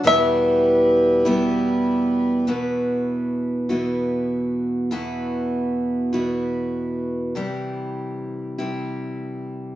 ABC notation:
X:1
M:6/8
L:1/8
Q:3/8=49
K:Em
V:1 name="Five-string banjo"
e4- e z | z6 | z6 | z6 |]
V:2 name="Harmonium"
[G,EB]6 | z6 | z6 | z6 |]
V:3 name="Steel-string acoustic guitar" clef=bass
[E,,B,,E,G,B,E]3 [E,,B,,E,G,B,E]3 | [E,,B,,E,B,EF]3 [E,,B,,E,B,EF]3 | [E,,B,,E,B,EF]3 [E,,B,,E,B,EF]3 | [C,E,G,EG]3 [C,E,G,EG]3 |]